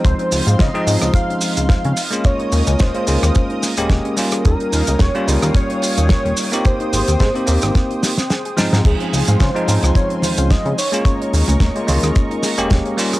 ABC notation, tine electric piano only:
X:1
M:4/4
L:1/16
Q:"Swing 16ths" 1/4=109
K:Ebmix
V:1 name="Tine electric piano"
[F,A,CE]4- [F,A,CE] [F,A,CE] [F,A,CE]8 z [A,B,DF]- | [A,B,DF]4- [A,B,DF] [A,B,DF] [A,B,DF]4- [A,B,DF] [A,B,DG]3 [G,B,DF]2- | [G,B,DF]4- [G,B,DF] [G,B,DF] [G,B,DF]8- [G,B,DF] [B,CEG]- | [B,CEG]4- [B,CEG] [B,CEG] [B,CEG]4- [B,CEG] z3 [F,A,CE]2- |
[F,A,CE]4- [F,A,CE] [F,A,CE] [F,A,CE]8 z [A,B,DF]- | [A,B,DF]4- [A,B,DF] [A,B,DF] [A,B,DF]4- [A,B,DF] [A,B,DG]3 [G,B,DF]2 |]